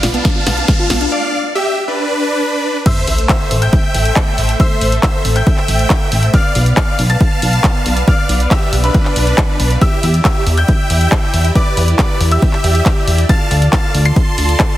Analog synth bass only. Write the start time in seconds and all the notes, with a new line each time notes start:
0.03 B1
0.47 B1
0.90 B1
3.08 A1
3.51 A1
3.95 A1
4.38 A1
4.81 A1
5.25 A1
5.68 A1
6.12 A1
6.55 B1
6.99 B1
7.42 B1
7.86 B1
8.29 B1
8.73 B1
9.16 B1
9.60 B1
10.03 E2
10.47 E2
10.90 E2
11.34 E2
11.77 E2
12.21 E2
12.64 E2
13.07 E2
13.51 D2
13.94 D2
14.38 D2